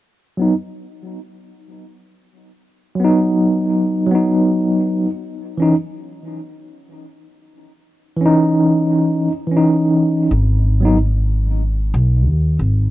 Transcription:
0.37 0.52 F#3 medium
0.37 0.53 B3 medium
0.42 0.54 D#4 medium
2.95 4.05 F#3 medium
3.00 4.08 B3 medium
3.04 4.10 D#4 medium
4.06 5.05 F#3 medium
4.11 5.07 B3 medium
4.15 5.09 D#4 medium
5.57 5.73 E3 medium
5.57 5.74 C#4 medium
5.62 5.75 D#4 medium
8.17 9.27 E3 medium
8.21 9.29 C#4 medium
8.26 9.32 D#4 loud
9.47 10.27 E3 medium
9.52 10.29 C#4 medium
9.57 10.31 D#4 medium
10.31 11.91 G#1 medium
10.80 10.95 F#3 medium
10.80 10.96 B3 medium
10.85 10.97 D#4 medium
11.94 12.27 B1 medium
12.27 12.56 D#2 medium
12.59 12.90 G#1 medium

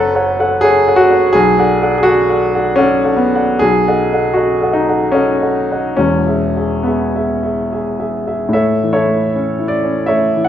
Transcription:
0.00 1.36 F#1 medium
0.00 1.37 F#2 medium
0.00 0.15 A4 loud
0.00 1.36 B4 loud
0.00 0.15 C#5 medium
0.00 0.16 F#5 medium
0.15 0.37 A4 medium
0.15 0.37 C#5 medium
0.15 0.37 F#5 medium
0.40 0.61 A4 medium
0.40 0.61 C#5 medium
0.40 0.61 F#5 medium
0.61 0.98 G#4 loud
0.61 0.85 A4 medium
0.61 0.85 C#5 medium
0.61 0.85 F#5 medium
0.87 1.08 A4 medium
0.87 1.09 C#5 medium
0.87 1.09 F#5 medium
0.96 1.33 F#4 loud
1.10 1.32 A4 medium
1.10 1.32 C#5 medium
1.10 1.32 F#5 medium
1.33 1.57 B1 medium
1.33 1.96 G#4 loud
1.58 1.79 A4 medium
1.58 1.79 D5 medium
1.58 1.79 F#5 medium
1.82 2.02 A4 medium
1.82 2.03 D5 medium
1.82 2.03 F#5 medium
1.98 2.04 G#4 medium
2.03 2.77 F#4 loud
2.03 2.26 A4 medium
2.03 2.26 D5 medium
2.03 2.27 F#5 medium
2.29 2.50 A4 medium
2.29 2.51 D5 medium
2.29 2.51 F#5 medium
2.54 2.76 A4 medium
2.54 2.77 D5 medium
2.54 2.76 F#5 medium
2.76 3.18 C#4 loud
2.76 3.02 A4 medium
2.76 3.02 D5 medium
2.76 3.02 F#5 medium
3.04 3.30 A4 medium
3.04 3.30 D5 medium
3.04 3.31 F#5 medium
3.17 3.60 B3 medium
3.34 3.58 A4 medium
3.34 3.59 D5 medium
3.34 3.59 F#5 medium
3.59 3.86 B1 medium
3.59 4.35 G#4 loud
3.88 4.09 A4 medium
3.88 4.10 D#5 medium
3.88 4.10 F#5 medium
4.13 4.34 A4 medium
4.13 4.34 D#5 medium
4.13 4.35 F#5 medium
4.33 4.72 F#4 medium
4.33 4.59 A4 medium
4.33 4.59 D#5 medium
4.33 4.59 F#5 medium
4.62 4.84 A4 medium
4.62 4.84 D#5 soft
4.62 4.85 F#5 medium
4.73 5.12 D#4 medium
4.88 5.11 A4 medium
4.88 5.11 D#5 medium
4.88 5.12 F#5 medium
5.12 5.95 C#4 medium
5.12 5.38 A4 medium
5.12 5.37 D#5 medium
5.12 5.38 F#5 medium
5.42 5.66 A4 soft
5.42 5.66 D#5 soft
5.42 5.67 F#5 medium
5.71 5.96 A4 soft
5.71 5.96 D#5 soft
5.71 5.96 F#5 medium
5.97 6.26 E1 medium
5.97 6.27 E2 medium
5.97 6.85 C#4 medium
6.26 6.53 G#4 soft
6.26 6.53 E5 medium
6.57 6.83 G#4 soft
6.57 6.83 E5 soft
6.83 8.12 B3 medium
6.83 7.12 G#4 soft
6.83 7.12 E5 soft
7.16 7.41 G#4 soft
7.16 7.41 E5 medium
7.43 7.68 G#4 soft
7.43 7.68 E5 medium
7.72 7.97 G#4 soft
7.72 7.97 E5 medium
8.00 8.24 G#4 soft
8.00 8.25 E5 soft
8.26 8.51 G#4 soft
8.26 8.52 E5 soft
8.49 10.48 A2 medium
8.53 8.92 A4 medium
8.53 8.91 C#5 medium
8.53 8.94 E5 medium
8.83 9.24 E3 soft
8.93 9.58 E4 medium
8.93 9.68 A4 medium
8.93 9.71 C#5 medium
9.08 9.50 A3 soft
9.35 9.75 C#4 soft
9.59 9.99 E4 soft
9.68 10.07 D5 medium
9.84 10.24 C#4 soft
10.06 10.48 A3 soft
10.06 10.43 A4 medium
10.06 10.43 C#5 medium
10.06 10.45 E5 medium
10.36 10.48 E3 soft
10.45 10.48 F#5 medium

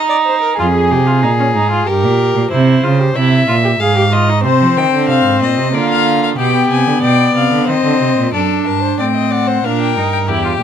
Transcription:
0.00 0.58 D#4 medium
0.10 0.16 D5 medium
0.26 0.41 C5 medium
0.42 0.57 A#4 medium
0.58 0.93 F2 medium
0.58 0.65 F4 medium
0.58 1.88 G#4 medium
0.75 0.93 G#4 medium
0.91 1.25 C3 medium
0.91 1.08 G4 medium
1.06 1.22 F4 medium
1.22 1.57 A#2 medium
1.22 1.29 D#4 medium
1.39 1.45 C#4 medium
1.55 1.87 G#2 medium
1.55 1.70 D#4 medium
1.71 1.86 F4 medium
1.87 2.05 G2 medium
1.87 2.50 G4 medium
1.87 2.51 A#4 medium
2.04 2.35 A#2 medium
2.35 2.42 A#2 medium
2.51 2.83 C3 medium
2.51 2.85 E4 medium
2.51 3.17 C5 medium
2.83 3.15 C#3 medium
2.83 3.01 F4 medium
2.99 3.15 G4 medium
3.16 3.48 C3 medium
3.16 3.47 E4 medium
3.16 3.82 E5 medium
3.48 3.80 A#2 medium
3.48 3.54 F4 medium
3.64 3.70 G4 medium
3.80 4.46 G#2 medium
3.80 3.95 G#4 medium
3.80 4.14 F5 medium
3.95 4.02 G4 medium
4.12 4.30 F4 medium
4.12 4.45 D#5 medium
4.28 4.43 D#4 medium
4.44 4.62 C3 medium
4.44 5.71 C4 medium
4.44 4.79 C5 medium
4.44 5.71 C5 medium
4.60 4.78 F3 medium
4.77 4.92 D#3 medium
4.77 5.08 G5 medium
4.93 5.10 D3 medium
5.09 5.24 C3 medium
5.09 5.41 F5 medium
5.25 5.43 G#2 medium
5.41 5.59 A#2 medium
5.41 5.76 D#5 medium
5.57 5.75 C3 medium
5.73 6.37 D3 medium
5.73 6.37 A#3 medium
5.73 6.37 F4 medium
5.73 5.90 D5 medium
5.90 6.22 F5 medium
6.23 6.29 F5 medium
6.38 6.70 B2 medium
6.38 7.69 B3 medium
6.38 7.02 G4 medium
6.38 6.70 G5 medium
6.70 6.86 C3 medium
6.70 7.02 G#5 medium
6.87 6.93 D3 medium
7.03 7.34 B2 medium
7.03 7.67 D5 medium
7.03 7.35 G5 medium
7.35 7.51 C3 medium
7.35 7.68 F5 medium
7.52 7.67 D3 medium
7.68 7.75 D#3 medium
7.68 8.33 C4 medium
7.68 8.33 C5 medium
7.68 8.33 D#5 medium
7.85 8.01 D3 medium
8.01 8.17 C3 medium
8.18 8.33 A#2 medium
8.34 8.64 F#2 medium
8.34 9.01 D4 medium
8.34 8.68 A4 medium
8.34 8.64 D5 medium
8.66 8.99 G2 medium
8.66 8.82 A#4 medium
8.66 8.99 A5 medium
8.83 8.98 C5 medium
8.99 9.63 A2 medium
8.99 9.64 C4 medium
8.99 9.05 D5 medium
8.99 9.33 G5 medium
9.15 9.33 D#5 medium
9.31 9.49 D5 medium
9.31 9.66 F#5 medium
9.48 9.66 C5 medium
9.64 9.98 A#2 medium
9.64 9.96 D4 medium
9.64 10.30 A#4 medium
9.64 9.80 F5 medium
9.81 10.12 G5 medium
9.96 10.30 G2 medium
9.96 10.28 D#4 medium
10.13 10.19 G5 medium
10.28 10.60 E2 medium
10.28 10.44 E4 medium
10.28 10.63 G4 medium
10.28 10.63 G5 medium
10.45 10.51 F4 medium

